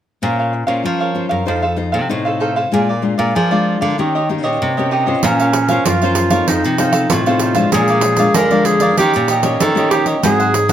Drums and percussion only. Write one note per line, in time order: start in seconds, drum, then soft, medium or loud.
5.23 pandeiro medium
5.40 pandeiro soft
5.53 pandeiro medium
5.68 pandeiro soft
5.86 pandeiro medium
6.02 pandeiro soft
6.15 pandeiro medium
6.30 pandeiro medium
6.48 pandeiro medium
6.64 pandeiro soft
6.78 pandeiro medium
6.93 pandeiro medium
7.10 pandeiro medium
7.26 pandeiro soft
7.39 pandeiro medium
7.55 pandeiro soft
7.72 pandeiro medium
7.88 pandeiro soft
8.01 pandeiro medium
8.16 pandeiro medium
8.34 pandeiro medium
8.51 pandeiro soft
8.65 pandeiro medium
8.80 pandeiro soft
8.97 pandeiro medium
9.13 pandeiro soft
9.28 pandeiro medium
9.43 pandeiro medium
9.60 pandeiro medium
9.77 pandeiro soft
9.91 pandeiro medium
10.06 pandeiro soft
10.23 pandeiro medium
10.40 pandeiro soft
10.54 pandeiro medium
10.69 pandeiro medium